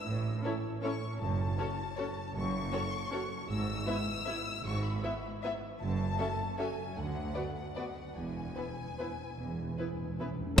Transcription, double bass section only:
0.07 A1
1.20 F#1
2.34 F#1
3.48 G#1
4.64 G#1
5.80 F#1
6.97 D2
8.15 E1
9.38 E1

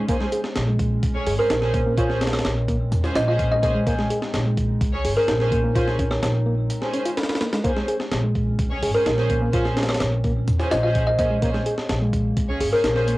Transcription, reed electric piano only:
0.09 A#3
0.21 G#3
0.32 G#4
0.68 G#3
1.27 G#4
1.50 D#4
1.74 A#3
1.86 A#3
1.98 F4
2.21 C#4
2.69 A#3
3.16 C#4
3.28 F4
3.63 A#3
3.75 G#3
3.87 A#3
3.99 G#3
4.10 G#4
4.46 G#3
5.05 G#4
5.28 D#4
5.52 A#3
5.64 A#3
5.76 F4
5.99 C#4
6.46 A#3
6.94 C#4
7.05 F4
7.41 A#3
7.52 G#3
7.64 A#3
7.76 G#3
7.88 G#4
8.24 G#3
8.83 G#4
9.06 D#4
9.30 A#3
9.42 A#3
9.54 F4
9.77 C#4
10.24 A#3
10.72 C#4
10.83 F4
11.19 A#3
11.31 G#3
11.42 A#3
11.54 G#3
11.66 G#4
12.02 G#3
12.61 G#4
12.84 D#4
13.08 A#3

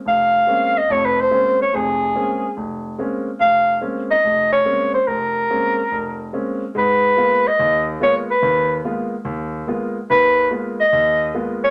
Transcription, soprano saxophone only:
0.08 F5
0.78 D#5
0.91 C#5
1.05 B4
1.21 C5
1.62 C#5
1.75 G#4
3.41 F5
4.11 D#5
4.52 C#5
4.94 C5
5.07 A#4
6.78 B4
7.47 D#5
8.03 C#5
8.31 B4
10.10 B4
10.80 D#5
11.64 C#5

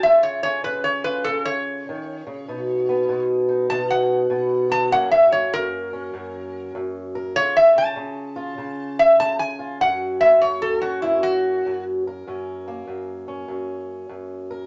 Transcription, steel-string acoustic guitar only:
0.05 C#3 F4
0.45 C#4
0.66 C#3
1.06 F4
1.27 C#3
1.89 D#3
2.27 C#3
2.48 B2 D#4
2.89 B3
3.09 B2
3.49 D#4
3.70 B2
4.30 B2
4.70 F#4
4.91 F#2 F#3 A#3 C#4 A#4
5.32 A#3
5.53 F#2
5.93 C#4
6.14 F#2
6.75 F#2
7.15 A#4
7.36 C#3 F4
7.75 C#4
7.96 C#3
8.36 F4
8.58 C#3
9.19 C#3
9.59 F4
9.81 F#2 C#4
10.21 A#3
10.43 F#2
10.81 C#4
11.04 F#2
11.66 F#2
12.07 A#4
12.27 F#2 C#4
12.68 A#3
12.87 F#2
13.28 C#4
13.48 F#2
14.09 F#2
14.51 A#4

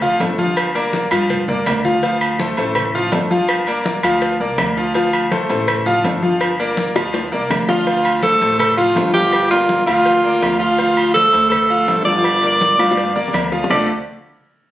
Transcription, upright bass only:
Already playing: D2
0.20 G1
1.12 G2
1.66 D2
2.58 A1
3.12 G1
4.03 D2
4.40 C2
4.58 D2
5.50 A1
6.04 G1
6.95 D2
7.32 C2
7.50 D2
8.41 A1
8.96 G1
9.87 D2
10.42 D2
11.34 D2
11.88 G1
12.79 G2
13.16 E2
13.33 D2
13.70 D2

